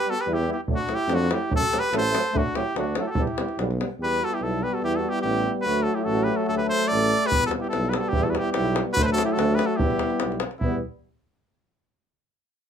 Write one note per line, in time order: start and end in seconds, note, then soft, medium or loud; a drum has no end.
0.00 0.11 G4 medium
0.00 0.11 B4 loud
0.05 0.14 G3 soft
0.05 0.17 B3 medium
0.09 0.19 F#4 medium
0.09 0.23 A4 loud
0.18 0.31 G4 medium
0.18 0.35 B4 medium
0.26 0.50 E2 loud
0.26 0.35 G3 medium
0.26 0.34 B3 medium
0.26 0.49 E4 medium
0.34 0.51 G4 loud
0.45 0.54 G3 medium
0.45 0.56 B3 medium
0.50 0.59 E4 medium
0.50 0.61 G4 medium
0.68 0.80 D2 medium
0.68 0.76 F#3 medium
0.68 0.77 A3 medium
0.68 0.92 D4 medium
0.68 davul low medium
0.75 0.96 F#4 loud
0.75 davul high soft
0.86 0.97 F#3 medium
0.86 0.95 A3 medium
0.86 davul high medium
0.90 1.11 E4 medium
0.94 1.16 G4 loud
1.08 1.32 F2 loud
1.08 1.18 F#3 medium
1.08 1.16 A3 medium
1.08 1.31 D4 medium
1.08 davul high medium
1.15 1.35 F#4 loud
1.29 1.38 F#3 medium
1.29 1.40 A3 medium
1.29 1.51 E4 medium
1.29 davul high medium
1.33 1.53 G4 medium
1.50 1.63 F#2 medium
1.50 1.59 F#3 medium
1.50 1.60 A3 medium
1.50 1.72 F#4 medium
1.50 davul low loud
1.56 1.81 A4 loud
1.63 davul high soft
1.70 1.81 F#3 medium
1.70 1.80 A3 medium
1.70 1.92 G4 medium
1.70 davul high medium
1.79 1.97 B4 loud
1.92 2.15 A1 loud
1.92 2.01 F#3 medium
1.92 2.00 A3 medium
1.92 2.38 A4 loud
1.92 davul high medium
1.98 2.39 C5 loud
2.11 2.23 F#3 medium
2.11 2.20 A3 medium
2.11 davul high medium
2.32 2.45 D2 medium
2.32 2.43 F#3 medium
2.32 2.41 A3 medium
2.32 davul low loud
2.37 2.57 D4 medium
2.37 2.58 F#4 loud
2.46 davul high soft
2.53 2.64 F#3 medium
2.53 2.62 A3 medium
2.53 2.75 E4 medium
2.53 2.77 G4 loud
2.53 davul high medium
2.76 2.99 D2 loud
2.76 2.85 F#3 medium
2.76 2.85 A3 medium
2.76 3.00 D4 medium
2.76 3.01 F#4 medium
2.76 davul high medium
2.95 3.06 F#3 medium
2.95 3.05 A3 medium
2.95 3.04 F#4 medium
2.95 3.08 A4 medium
2.95 davul high medium
3.02 3.11 E4 soft
3.07 3.21 F#4 medium
3.07 3.10 G4 medium
3.07 3.23 A4 loud
3.15 3.28 E2 medium
3.15 3.26 G3 medium
3.15 3.25 B3 medium
3.15 davul low loud
3.19 3.60 E4 medium
3.19 3.61 G4 medium
3.27 davul high soft
3.38 3.47 G3 medium
3.38 3.46 B3 medium
3.38 davul high medium
3.48 davul high soft
3.58 3.81 B1 loud
3.58 3.68 G3 medium
3.58 3.66 B3 medium
3.58 davul high medium
3.71 davul high soft
3.78 3.89 G3 medium
3.78 3.87 B3 medium
3.78 davul high medium
3.99 4.22 E2 medium
3.99 5.68 G3 medium
3.99 5.67 B3 medium
3.99 4.23 G4 medium
4.03 4.26 B4 loud
4.21 4.34 F#4 medium
4.21 4.36 A4 loud
4.33 4.41 E4 medium
4.33 4.45 G4 medium
4.41 4.64 B1 loud
4.41 4.64 E4 medium
4.41 4.65 A4 medium
4.63 4.74 G4 medium
4.63 4.75 B4 medium
4.72 4.83 F#4 medium
4.72 4.84 A4 medium
4.83 5.06 E2 medium
4.83 5.00 E4 medium
4.83 4.97 G4 loud
4.96 5.13 F#4 medium
4.96 5.11 A4 medium
5.09 5.22 E4 medium
5.09 5.21 G4 loud
5.22 5.47 A1 loud
5.22 5.53 E4 medium
5.22 5.52 G4 loud
5.61 5.88 D2 medium
5.61 5.84 F#4 medium
5.61 5.84 B4 loud
5.65 7.15 F#3 medium
5.65 7.34 A3 medium
5.83 5.96 F#4 medium
5.83 5.96 A4 loud
5.94 6.05 E4 medium
5.94 6.06 G4 medium
6.04 6.29 A1 loud
6.04 6.26 F#4 medium
6.04 6.25 A4 loud
6.24 6.36 G4 medium
6.24 6.38 B4 loud
6.34 6.44 F#4 medium
6.34 6.48 A4 medium
6.45 6.51 F#4 medium
6.45 6.54 A4 loud
6.49 6.72 D2 medium
6.55 6.64 G4 medium
6.55 6.68 B4 medium
6.65 6.85 A4 medium
6.69 6.89 C5 loud
6.85 7.28 A4 loud
6.85 7.28 D5 loud
6.92 7.14 A1 loud
7.26 7.47 G4 medium
7.26 7.46 B4 loud
7.32 7.55 E2 medium
7.32 8.93 G3 medium
7.32 8.97 B3 medium
7.32 davul low medium
7.46 7.53 F#4 medium
7.46 7.52 A4 loud
7.51 davul high medium
7.59 7.68 E4 medium
7.59 7.69 G4 medium
7.64 davul high soft
7.69 7.92 E4 medium
7.69 7.91 A4 loud
7.69 davul high medium
7.74 7.97 B1 loud
7.85 davul high soft
7.89 7.96 G4 medium
7.89 7.93 B4 loud
7.89 7.96 B4 medium
7.93 8.01 G4 medium
7.93 7.97 A4 medium
7.93 8.10 A4 loud
7.93 davul high medium
7.99 8.04 F#4 medium
8.04 8.13 F#4 medium
8.08 8.27 E4 medium
8.08 8.25 G4 loud
8.13 8.37 E2 loud
8.13 davul low loud
8.23 8.30 F#4 medium
8.23 8.31 A4 medium
8.30 8.33 F#4 medium
8.30 8.40 G4 soft
8.30 8.39 B4 medium
8.35 8.51 G4 loud
8.35 davul high medium
8.39 8.52 E4 medium
8.45 davul high soft
8.52 8.83 E4 medium
8.52 8.83 G4 loud
8.52 davul high medium
8.57 8.80 B1 loud
8.66 davul high soft
8.76 davul high medium
8.92 9.04 F#4 medium
8.92 9.03 B4 loud
8.96 9.20 D2 medium
8.96 9.78 F#3 medium
8.96 9.80 A3 medium
8.96 davul low medium
9.01 9.05 A4 medium
9.01 9.12 B4 loud
9.01 9.06 C5 loud
9.13 9.22 F#4 medium
9.13 9.24 A4 loud
9.18 davul high medium
9.23 9.36 E4 medium
9.23 9.34 G4 medium
9.33 9.58 F#4 medium
9.33 9.56 A4 loud
9.37 9.60 D2 loud
9.37 davul high medium
9.51 davul high soft
9.55 9.69 G4 medium
9.55 9.68 B4 loud
9.59 davul high medium
9.66 9.79 F#4 medium
9.66 9.78 A4 medium
9.76 10.02 E2 medium
9.76 10.44 G3 medium
9.76 10.45 B3 medium
9.76 10.40 E4 medium
9.76 10.40 G4 loud
9.76 davul low loud
9.90 davul high soft
9.99 davul high medium
10.10 davul high soft
10.20 10.44 B1 medium
10.20 davul high medium
10.32 davul high soft
10.40 davul high medium
10.51 davul high soft
10.59 10.82 G3 medium
10.59 10.81 B3 medium
10.59 10.80 E4 medium
10.59 davul low medium
10.63 10.82 E2 medium